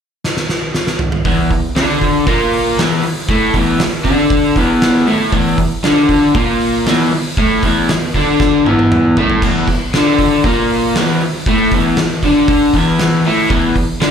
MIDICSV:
0, 0, Header, 1, 4, 480
1, 0, Start_track
1, 0, Tempo, 510204
1, 1181, Time_signature, 4, 2, 24, 8
1, 13273, End_track
2, 0, Start_track
2, 0, Title_t, "Overdriven electric guitar"
2, 0, Program_c, 0, 29
2, 1176, Note_on_c, 0, 40, 97
2, 1181, Note_on_c, 0, 52, 101
2, 1407, Note_off_c, 0, 40, 0
2, 1412, Note_off_c, 0, 52, 0
2, 1418, Note_on_c, 0, 40, 74
2, 1610, Note_off_c, 0, 40, 0
2, 1652, Note_on_c, 0, 50, 97
2, 1660, Note_on_c, 0, 62, 107
2, 2125, Note_off_c, 0, 50, 0
2, 2130, Note_off_c, 0, 62, 0
2, 2132, Note_on_c, 0, 46, 93
2, 2138, Note_on_c, 0, 58, 100
2, 2605, Note_off_c, 0, 46, 0
2, 2608, Note_off_c, 0, 58, 0
2, 2612, Note_on_c, 0, 40, 89
2, 2622, Note_on_c, 0, 52, 104
2, 2845, Note_off_c, 0, 40, 0
2, 2850, Note_off_c, 0, 52, 0
2, 3098, Note_on_c, 0, 45, 103
2, 3101, Note_on_c, 0, 57, 108
2, 3327, Note_off_c, 0, 45, 0
2, 3328, Note_on_c, 0, 40, 95
2, 3329, Note_off_c, 0, 57, 0
2, 3336, Note_on_c, 0, 52, 98
2, 3557, Note_off_c, 0, 40, 0
2, 3567, Note_off_c, 0, 52, 0
2, 3569, Note_on_c, 0, 40, 79
2, 3762, Note_off_c, 0, 40, 0
2, 3800, Note_on_c, 0, 50, 94
2, 3810, Note_on_c, 0, 62, 102
2, 4278, Note_off_c, 0, 50, 0
2, 4283, Note_off_c, 0, 62, 0
2, 4296, Note_on_c, 0, 40, 99
2, 4300, Note_on_c, 0, 52, 100
2, 4766, Note_on_c, 0, 45, 98
2, 4767, Note_off_c, 0, 40, 0
2, 4768, Note_off_c, 0, 52, 0
2, 4775, Note_on_c, 0, 57, 94
2, 5001, Note_off_c, 0, 45, 0
2, 5005, Note_on_c, 0, 40, 105
2, 5006, Note_off_c, 0, 57, 0
2, 5012, Note_on_c, 0, 52, 100
2, 5241, Note_off_c, 0, 40, 0
2, 5244, Note_off_c, 0, 52, 0
2, 5254, Note_on_c, 0, 40, 74
2, 5445, Note_off_c, 0, 40, 0
2, 5487, Note_on_c, 0, 50, 99
2, 5496, Note_on_c, 0, 62, 105
2, 5963, Note_off_c, 0, 50, 0
2, 5967, Note_off_c, 0, 62, 0
2, 5975, Note_on_c, 0, 46, 93
2, 5985, Note_on_c, 0, 58, 104
2, 6448, Note_off_c, 0, 46, 0
2, 6452, Note_off_c, 0, 58, 0
2, 6462, Note_on_c, 0, 40, 93
2, 6471, Note_on_c, 0, 52, 99
2, 6691, Note_off_c, 0, 40, 0
2, 6696, Note_off_c, 0, 52, 0
2, 6946, Note_on_c, 0, 45, 112
2, 6946, Note_on_c, 0, 57, 99
2, 7174, Note_off_c, 0, 45, 0
2, 7174, Note_off_c, 0, 57, 0
2, 7180, Note_on_c, 0, 40, 90
2, 7190, Note_on_c, 0, 52, 106
2, 7411, Note_off_c, 0, 40, 0
2, 7416, Note_off_c, 0, 52, 0
2, 7431, Note_on_c, 0, 40, 76
2, 7616, Note_off_c, 0, 40, 0
2, 7668, Note_on_c, 0, 50, 99
2, 7670, Note_on_c, 0, 62, 107
2, 8134, Note_on_c, 0, 40, 92
2, 8136, Note_off_c, 0, 50, 0
2, 8137, Note_off_c, 0, 62, 0
2, 8148, Note_on_c, 0, 52, 99
2, 8610, Note_off_c, 0, 40, 0
2, 8617, Note_off_c, 0, 52, 0
2, 8629, Note_on_c, 0, 45, 95
2, 8641, Note_on_c, 0, 57, 91
2, 8858, Note_off_c, 0, 45, 0
2, 8863, Note_off_c, 0, 57, 0
2, 8870, Note_on_c, 0, 40, 100
2, 8875, Note_on_c, 0, 52, 99
2, 9098, Note_off_c, 0, 40, 0
2, 9101, Note_off_c, 0, 52, 0
2, 9113, Note_on_c, 0, 40, 70
2, 9299, Note_off_c, 0, 40, 0
2, 9347, Note_on_c, 0, 50, 105
2, 9356, Note_on_c, 0, 62, 115
2, 9818, Note_off_c, 0, 50, 0
2, 9822, Note_off_c, 0, 62, 0
2, 9829, Note_on_c, 0, 46, 103
2, 9840, Note_on_c, 0, 58, 97
2, 10300, Note_off_c, 0, 46, 0
2, 10305, Note_off_c, 0, 58, 0
2, 10322, Note_on_c, 0, 40, 87
2, 10329, Note_on_c, 0, 52, 99
2, 10546, Note_off_c, 0, 40, 0
2, 10549, Note_off_c, 0, 52, 0
2, 10798, Note_on_c, 0, 45, 96
2, 10806, Note_on_c, 0, 57, 109
2, 11024, Note_off_c, 0, 45, 0
2, 11028, Note_off_c, 0, 57, 0
2, 11041, Note_on_c, 0, 40, 90
2, 11049, Note_on_c, 0, 52, 99
2, 11266, Note_off_c, 0, 40, 0
2, 11270, Note_off_c, 0, 52, 0
2, 11278, Note_on_c, 0, 40, 79
2, 11463, Note_off_c, 0, 40, 0
2, 11516, Note_on_c, 0, 50, 85
2, 11529, Note_on_c, 0, 62, 120
2, 11984, Note_off_c, 0, 50, 0
2, 11985, Note_on_c, 0, 40, 92
2, 11990, Note_off_c, 0, 62, 0
2, 11996, Note_on_c, 0, 52, 110
2, 12458, Note_off_c, 0, 40, 0
2, 12464, Note_off_c, 0, 52, 0
2, 12474, Note_on_c, 0, 45, 92
2, 12481, Note_on_c, 0, 57, 110
2, 12702, Note_off_c, 0, 45, 0
2, 12704, Note_on_c, 0, 40, 95
2, 12705, Note_on_c, 0, 52, 119
2, 12706, Note_off_c, 0, 57, 0
2, 12937, Note_off_c, 0, 40, 0
2, 12938, Note_off_c, 0, 52, 0
2, 12949, Note_on_c, 0, 40, 70
2, 13139, Note_off_c, 0, 40, 0
2, 13177, Note_on_c, 0, 50, 110
2, 13182, Note_on_c, 0, 62, 108
2, 13273, Note_off_c, 0, 50, 0
2, 13273, Note_off_c, 0, 62, 0
2, 13273, End_track
3, 0, Start_track
3, 0, Title_t, "Muted overdriven electric guitar strokes"
3, 2859, Note_on_c, 9, 29, 58
3, 2953, Note_off_c, 9, 29, 0
3, 6705, Note_on_c, 9, 29, 59
3, 6799, Note_off_c, 9, 29, 0
3, 10563, Note_on_c, 9, 29, 55
3, 10657, Note_off_c, 9, 29, 0
3, 13273, End_track
4, 0, Start_track
4, 0, Title_t, "Drums"
4, 230, Note_on_c, 9, 38, 78
4, 324, Note_off_c, 9, 38, 0
4, 346, Note_on_c, 9, 38, 73
4, 440, Note_off_c, 9, 38, 0
4, 464, Note_on_c, 9, 38, 87
4, 558, Note_off_c, 9, 38, 0
4, 701, Note_on_c, 9, 38, 100
4, 795, Note_off_c, 9, 38, 0
4, 819, Note_on_c, 9, 38, 107
4, 913, Note_off_c, 9, 38, 0
4, 932, Note_on_c, 9, 45, 99
4, 1026, Note_off_c, 9, 45, 0
4, 1055, Note_on_c, 9, 45, 108
4, 1149, Note_off_c, 9, 45, 0
4, 1174, Note_on_c, 9, 46, 84
4, 1176, Note_on_c, 9, 36, 113
4, 1269, Note_off_c, 9, 46, 0
4, 1271, Note_off_c, 9, 36, 0
4, 1416, Note_on_c, 9, 46, 70
4, 1417, Note_on_c, 9, 36, 84
4, 1510, Note_off_c, 9, 46, 0
4, 1511, Note_off_c, 9, 36, 0
4, 1655, Note_on_c, 9, 46, 87
4, 1660, Note_on_c, 9, 38, 103
4, 1749, Note_off_c, 9, 46, 0
4, 1754, Note_off_c, 9, 38, 0
4, 1894, Note_on_c, 9, 46, 53
4, 1895, Note_on_c, 9, 36, 75
4, 1988, Note_off_c, 9, 46, 0
4, 1989, Note_off_c, 9, 36, 0
4, 2132, Note_on_c, 9, 46, 95
4, 2134, Note_on_c, 9, 36, 111
4, 2226, Note_off_c, 9, 46, 0
4, 2228, Note_off_c, 9, 36, 0
4, 2379, Note_on_c, 9, 46, 67
4, 2473, Note_off_c, 9, 46, 0
4, 2621, Note_on_c, 9, 46, 95
4, 2626, Note_on_c, 9, 38, 123
4, 2715, Note_off_c, 9, 46, 0
4, 2720, Note_off_c, 9, 38, 0
4, 2852, Note_on_c, 9, 46, 67
4, 2946, Note_off_c, 9, 46, 0
4, 3090, Note_on_c, 9, 46, 78
4, 3091, Note_on_c, 9, 36, 108
4, 3184, Note_off_c, 9, 46, 0
4, 3186, Note_off_c, 9, 36, 0
4, 3329, Note_on_c, 9, 36, 85
4, 3331, Note_on_c, 9, 46, 65
4, 3423, Note_off_c, 9, 36, 0
4, 3425, Note_off_c, 9, 46, 0
4, 3570, Note_on_c, 9, 46, 91
4, 3574, Note_on_c, 9, 38, 118
4, 3664, Note_off_c, 9, 46, 0
4, 3668, Note_off_c, 9, 38, 0
4, 3808, Note_on_c, 9, 36, 73
4, 3810, Note_on_c, 9, 46, 56
4, 3902, Note_off_c, 9, 36, 0
4, 3904, Note_off_c, 9, 46, 0
4, 4048, Note_on_c, 9, 36, 116
4, 4049, Note_on_c, 9, 46, 85
4, 4142, Note_off_c, 9, 36, 0
4, 4143, Note_off_c, 9, 46, 0
4, 4289, Note_on_c, 9, 36, 86
4, 4290, Note_on_c, 9, 46, 57
4, 4383, Note_off_c, 9, 36, 0
4, 4384, Note_off_c, 9, 46, 0
4, 4530, Note_on_c, 9, 46, 81
4, 4535, Note_on_c, 9, 38, 121
4, 4624, Note_off_c, 9, 46, 0
4, 4629, Note_off_c, 9, 38, 0
4, 4770, Note_on_c, 9, 46, 60
4, 4864, Note_off_c, 9, 46, 0
4, 5009, Note_on_c, 9, 46, 87
4, 5010, Note_on_c, 9, 36, 112
4, 5103, Note_off_c, 9, 46, 0
4, 5104, Note_off_c, 9, 36, 0
4, 5248, Note_on_c, 9, 46, 63
4, 5250, Note_on_c, 9, 36, 86
4, 5342, Note_off_c, 9, 46, 0
4, 5344, Note_off_c, 9, 36, 0
4, 5489, Note_on_c, 9, 46, 88
4, 5494, Note_on_c, 9, 38, 116
4, 5583, Note_off_c, 9, 46, 0
4, 5588, Note_off_c, 9, 38, 0
4, 5727, Note_on_c, 9, 46, 55
4, 5729, Note_on_c, 9, 36, 67
4, 5821, Note_off_c, 9, 46, 0
4, 5824, Note_off_c, 9, 36, 0
4, 5971, Note_on_c, 9, 46, 83
4, 5972, Note_on_c, 9, 36, 122
4, 6065, Note_off_c, 9, 46, 0
4, 6067, Note_off_c, 9, 36, 0
4, 6213, Note_on_c, 9, 46, 65
4, 6307, Note_off_c, 9, 46, 0
4, 6456, Note_on_c, 9, 46, 96
4, 6460, Note_on_c, 9, 38, 120
4, 6550, Note_off_c, 9, 46, 0
4, 6555, Note_off_c, 9, 38, 0
4, 6698, Note_on_c, 9, 46, 72
4, 6792, Note_off_c, 9, 46, 0
4, 6936, Note_on_c, 9, 36, 123
4, 6936, Note_on_c, 9, 46, 87
4, 7030, Note_off_c, 9, 36, 0
4, 7031, Note_off_c, 9, 46, 0
4, 7174, Note_on_c, 9, 46, 67
4, 7177, Note_on_c, 9, 36, 84
4, 7268, Note_off_c, 9, 46, 0
4, 7271, Note_off_c, 9, 36, 0
4, 7421, Note_on_c, 9, 46, 82
4, 7425, Note_on_c, 9, 38, 122
4, 7515, Note_off_c, 9, 46, 0
4, 7520, Note_off_c, 9, 38, 0
4, 7662, Note_on_c, 9, 36, 66
4, 7663, Note_on_c, 9, 46, 58
4, 7756, Note_off_c, 9, 36, 0
4, 7757, Note_off_c, 9, 46, 0
4, 7902, Note_on_c, 9, 36, 118
4, 7909, Note_on_c, 9, 38, 73
4, 7996, Note_off_c, 9, 36, 0
4, 8003, Note_off_c, 9, 38, 0
4, 8150, Note_on_c, 9, 48, 72
4, 8244, Note_off_c, 9, 48, 0
4, 8270, Note_on_c, 9, 48, 74
4, 8364, Note_off_c, 9, 48, 0
4, 8390, Note_on_c, 9, 47, 99
4, 8484, Note_off_c, 9, 47, 0
4, 8626, Note_on_c, 9, 43, 105
4, 8720, Note_off_c, 9, 43, 0
4, 8745, Note_on_c, 9, 43, 97
4, 8840, Note_off_c, 9, 43, 0
4, 8865, Note_on_c, 9, 36, 110
4, 8868, Note_on_c, 9, 49, 96
4, 8868, Note_on_c, 9, 55, 79
4, 8959, Note_off_c, 9, 36, 0
4, 8962, Note_off_c, 9, 49, 0
4, 8962, Note_off_c, 9, 55, 0
4, 9103, Note_on_c, 9, 36, 90
4, 9103, Note_on_c, 9, 46, 66
4, 9197, Note_off_c, 9, 36, 0
4, 9197, Note_off_c, 9, 46, 0
4, 9345, Note_on_c, 9, 46, 79
4, 9349, Note_on_c, 9, 38, 112
4, 9439, Note_off_c, 9, 46, 0
4, 9444, Note_off_c, 9, 38, 0
4, 9581, Note_on_c, 9, 46, 59
4, 9583, Note_on_c, 9, 36, 74
4, 9675, Note_off_c, 9, 46, 0
4, 9677, Note_off_c, 9, 36, 0
4, 9821, Note_on_c, 9, 46, 89
4, 9823, Note_on_c, 9, 36, 109
4, 9915, Note_off_c, 9, 46, 0
4, 9917, Note_off_c, 9, 36, 0
4, 10064, Note_on_c, 9, 46, 64
4, 10159, Note_off_c, 9, 46, 0
4, 10304, Note_on_c, 9, 46, 83
4, 10309, Note_on_c, 9, 38, 122
4, 10398, Note_off_c, 9, 46, 0
4, 10403, Note_off_c, 9, 38, 0
4, 10545, Note_on_c, 9, 46, 65
4, 10639, Note_off_c, 9, 46, 0
4, 10780, Note_on_c, 9, 46, 84
4, 10784, Note_on_c, 9, 36, 112
4, 10874, Note_off_c, 9, 46, 0
4, 10878, Note_off_c, 9, 36, 0
4, 11018, Note_on_c, 9, 46, 66
4, 11023, Note_on_c, 9, 36, 87
4, 11112, Note_off_c, 9, 46, 0
4, 11117, Note_off_c, 9, 36, 0
4, 11257, Note_on_c, 9, 46, 88
4, 11262, Note_on_c, 9, 38, 118
4, 11351, Note_off_c, 9, 46, 0
4, 11356, Note_off_c, 9, 38, 0
4, 11500, Note_on_c, 9, 46, 56
4, 11503, Note_on_c, 9, 36, 69
4, 11594, Note_off_c, 9, 46, 0
4, 11597, Note_off_c, 9, 36, 0
4, 11738, Note_on_c, 9, 46, 89
4, 11742, Note_on_c, 9, 36, 120
4, 11832, Note_off_c, 9, 46, 0
4, 11836, Note_off_c, 9, 36, 0
4, 11980, Note_on_c, 9, 46, 63
4, 11982, Note_on_c, 9, 36, 79
4, 12074, Note_off_c, 9, 46, 0
4, 12076, Note_off_c, 9, 36, 0
4, 12221, Note_on_c, 9, 46, 87
4, 12225, Note_on_c, 9, 38, 124
4, 12315, Note_off_c, 9, 46, 0
4, 12319, Note_off_c, 9, 38, 0
4, 12461, Note_on_c, 9, 46, 60
4, 12555, Note_off_c, 9, 46, 0
4, 12702, Note_on_c, 9, 46, 80
4, 12703, Note_on_c, 9, 36, 123
4, 12796, Note_off_c, 9, 46, 0
4, 12797, Note_off_c, 9, 36, 0
4, 12942, Note_on_c, 9, 36, 78
4, 12944, Note_on_c, 9, 46, 63
4, 13036, Note_off_c, 9, 36, 0
4, 13038, Note_off_c, 9, 46, 0
4, 13183, Note_on_c, 9, 46, 78
4, 13187, Note_on_c, 9, 38, 122
4, 13273, Note_off_c, 9, 38, 0
4, 13273, Note_off_c, 9, 46, 0
4, 13273, End_track
0, 0, End_of_file